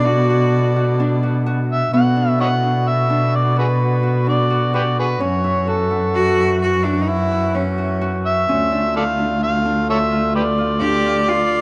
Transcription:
Already playing: cello B2, woodwind section D3 B3 D4, harp B3 D4 E4 G4, harmonica D5
0.06 cello F#4
0.30 harp F#4
0.76 harp F#4
1.00 harp D4
1.23 harp F#4
1.46 harp F#4
1.71 harmonica E5
1.92 cello B2, woodwind section D3 B3 F#4, harp B3, harmonica F#5
2.16 harp D4
2.40 harp E4, harmonica C#5 D#5 F#5
2.63 harp D4
2.88 harmonica E5
3.10 harp D4
3.35 harmonica D5
3.56 harp F#4, harmonica F#4 G#4 B4
4.03 harp F#4
4.27 harp D4, harmonica D5
4.50 harp F#4
4.74 harp F#4, harmonica G4 B4 D5
4.99 harmonica F#4 G#4 B4
5.20 cello F#2, woodwind section E3 A3, harp C#4, harmonica C#5
5.44 harp E4
5.67 harp F#4, harmonica A4
5.91 harp E4
6.15 cello F#4
6.38 harp E4
6.62 cello F#4
6.84 cello D4, harp F#4
7.02 cello D#4
7.08 cello E4
7.32 harp F#4
7.55 cello C#4, harp E4
7.78 harp F#4
8.01 harp F#4
8.26 harmonica E5
8.48 cello D2, woodwind section D3 F4, harp C#4
8.72 harp D4
8.94 harp E4, harmonica A4 D5 F5
9.18 harp D4
9.43 harmonica F5
9.65 harp D4
9.90 harmonica A4 C#5 E5
10.12 harp F4
10.36 harmonica G4 B4 D5
10.58 harp F4
10.80 harp D4, cello G4
11.05 harp F4
11.28 harp F4, cello F4

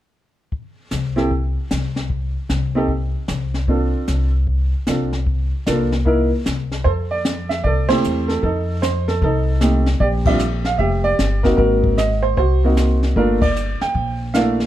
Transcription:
0.52 brush sweep, kick
0.91 upright bass C2, snare, hi-hat pedal
1.16 upright piano C4 E4 G4 A4, snare
1.31 brush sweep, kick
1.71 upright bass C2, snare, hi-hat pedal
1.96 snare
2.10 brush sweep, kick
2.49 upright bass C2, snare, hi-hat pedal
2.75 upright piano C4 D#4 G4 A4
2.88 brush sweep, kick
3.28 upright bass C2, snare, hi-hat pedal
3.54 snare
3.68 upright piano C4 D4 F4 A4, brush sweep, kick
4.08 upright bass C2, snare, hi-hat pedal
4.47 brush sweep, kick
4.87 upright bass C2, upright piano C4 D4 F4 A4, snare, hi-hat pedal
5.13 snare
5.27 brush sweep, kick
5.66 upright bass C2, upright piano A#3 D4 F4 A4, snare, hi-hat pedal
5.92 snare
6.05 upright piano A#3 D#4 E4 A#4, brush sweep, kick
6.46 upright bass C2, snare, hi-hat pedal
6.72 snare
6.84 upright bass F2, upright piano A4 C5, brush sweep, kick
7.11 upright piano D5
7.25 snare, hi-hat pedal
7.49 upright piano E5, snare
7.64 upright bass C2, upright piano A4 D5, brush sweep, kick
7.89 upright piano A3 C4 E4 G4 C5, snare, ride
8.04 upright bass E2, hi-hat pedal
8.28 upright piano A4, snare
8.43 upright bass F2, upright piano D#4 A4, brush sweep, kick
8.82 upright piano C5, snare, hi-hat pedal
9.08 upright piano A4, snare
9.22 upright bass C2, upright piano D#4 A4, brush sweep, kick
9.61 upright piano A3 C4 D#4 G4, snare, hi-hat pedal
9.86 snare
10.00 upright bass A#1, upright piano G4 D5, brush sweep, kick
10.25 upright piano G3 C4 D4 F4 E5, kick, ride
10.39 hi-hat pedal
10.65 upright piano F5, snare
10.78 upright bass F1, upright piano G4 E5, brush sweep, kick
11.04 upright piano D5
11.19 upright bass G1, snare, hi-hat pedal
11.43 upright piano A#3 C4 D#4 F#4 A#4, kick, snare
11.57 upright bass G#1, upright piano F#4 A#4, brush sweep, kick
11.84 kick
11.98 upright piano D#5, snare, hi-hat pedal
12.23 upright piano C5
12.37 upright bass C2, upright piano F#4 C5, brush sweep, kick
12.64 upright piano A#3 C4 D#4 F#4
12.77 snare, hi-hat pedal
13.03 snare
13.16 upright bass G1, upright piano A3 A#3 D4 F4 A#4, brush sweep, kick
13.42 upright piano D5, kick, ride
13.56 hi-hat pedal
13.81 upright piano G5, muted upright bass stroke, snare
13.95 upright bass A#1, brush sweep, kick
14.34 upright piano A3 A#3 D4 E4 F5, snare, hi-hat pedal
14.60 snare

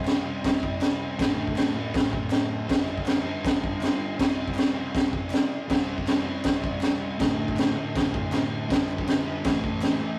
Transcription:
Already playing: distorted electric guitar C3 G3 C4
0.05 snare, clap, crash
0.25 distorted electric guitar C3 G3 C4
0.44 kick, snare, crash
0.63 kick
0.81 snare, clap, crash
1.19 distorted electric guitar D2 A2 D3, kick, snare, crash
1.47 kick
1.56 snare, clap, crash
1.75 distorted electric guitar D2 A2 D3
1.94 kick, snare, crash
2.13 kick
2.30 snare, clap, crash
2.67 distorted electric guitar G2 D3 G3, kick, snare, crash
2.88 clap
2.98 kick
3.06 snare, clap, crash
3.24 distorted electric guitar G2 D3 G3
3.45 kick, snare, crash
3.64 kick
3.81 snare, clap, crash
4.17 distorted electric guitar C3 G3 C4, kick, snare, crash
4.48 kick
4.55 snare, clap, crash
4.74 distorted electric guitar C3 G3 C4
4.95 kick, snare, crash
5.13 kick
5.30 snare, clap, crash
5.68 distorted electric guitar C3 G3 C4, kick, snare, crash
5.98 kick
6.07 snare, clap, crash
6.24 distorted electric guitar C3 G3 C4
6.44 kick, snare, crash
6.64 kick
6.81 snare, clap, crash
7.18 distorted electric guitar D2 A2 D3, kick, snare, crash
7.48 kick
7.57 snare, clap, crash
7.75 distorted electric guitar D2 A2 D3
7.96 kick, snare, crash
8.14 kick
8.32 snare, clap, crash
8.68 distorted electric guitar G2 D3 G3, kick, snare, crash
8.89 clap
8.98 kick
9.07 snare, clap, crash
9.26 distorted electric guitar G2 D3 G3
9.44 distorted electric guitar A2 E3 A3, kick, snare, crash
9.64 kick
9.82 snare, clap, crash
9.99 distorted electric guitar A2 E3 A3

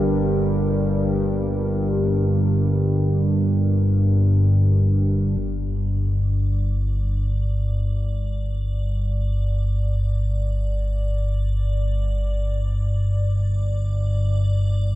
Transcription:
Already playing: synth drone G1 G2, analog synth pad G3 D4 G4 A#4
5.38 synth drone G1 G2, ambient pad D5

